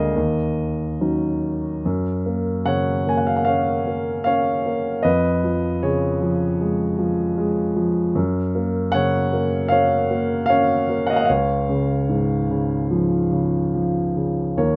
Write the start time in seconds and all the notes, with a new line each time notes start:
Already playing: D2 D3 G#3 A#3 A#4 D5 D#5 F5
0.16 D#2
1.01 F#3 C#4 D#4
1.85 F#2
2.26 A#3
2.65 C#3 C#5 F#5
3.07 A#3 G#5
3.17 F#5
3.27 F5
3.36 F#5
3.45 C#4 C#5 F5
3.87 A#3
4.24 C#4 C#5 F5
4.66 A#3
5.03 F2 B4 D#5
5.44 F3
5.83 C#3 G#4 C#5
6.22 F3
6.61 G#3
6.99 F3
7.38 G#3
7.76 F3
8.15 F#2
8.55 A#3
8.92 C#3 C#5 F#5
9.33 A#3
9.68 C#4 C#5 F5
10.11 A#3
10.46 C#4 C#5 F5
10.89 A#3
11.07 D#5 F#5
11.13 F5 F#5
11.20 D#5
11.25 C#5 F5
11.29 C#2
11.69 C#3
12.09 G#2
12.50 C#3
12.91 F3
13.32 C#3
13.74 F3
14.16 C#3
14.57 D#2 A#4 C#5